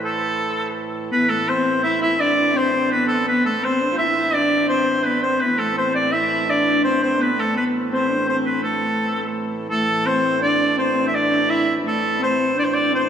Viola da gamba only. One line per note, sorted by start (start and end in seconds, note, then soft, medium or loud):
1.11 1.30 B3 medium
1.28 1.36 A3 medium
1.34 1.40 B3 medium
1.38 1.47 A3 medium
1.47 1.81 C4 medium
1.83 2.00 E4 medium
2.01 2.18 E4 medium
2.19 2.36 D4 medium
2.36 2.53 D4 medium
2.54 2.71 C4 medium
2.74 2.94 C4 medium
2.92 3.27 B3 medium
3.28 3.47 B3 medium
3.45 3.62 A3 medium
3.63 3.82 C4 medium
3.81 3.91 D4 medium
3.92 4.00 F4 medium
3.98 4.35 E4 medium
4.34 4.69 D4 medium
4.69 5.03 C4 medium
5.06 5.22 B3 medium
5.23 5.44 C4 medium
5.42 5.58 B3 medium
5.59 5.76 A3 medium
5.77 6.15 C4 medium
6.13 6.48 E4 medium
6.49 6.86 D4 medium
6.84 7.02 C4 medium
7.03 7.18 C4 medium
7.19 7.36 B3 medium
7.37 7.57 A3 medium
7.56 7.73 B3 medium
7.91 8.11 C4 medium
8.09 8.27 D4 medium
8.27 8.63 C4 medium
8.61 9.33 A3 medium
9.69 10.07 A3 medium
10.06 10.41 C4 medium
10.42 10.58 D4 medium
10.59 10.78 D4 medium
10.77 10.92 C4 medium
10.93 11.10 C4 medium
11.12 11.29 D4 medium
11.30 11.38 D4 medium
11.47 11.72 E4 medium
11.83 12.21 A3 medium
12.19 12.54 C4 medium
12.55 12.68 D4 medium
12.70 12.92 D4 medium
12.90 13.08 C4 medium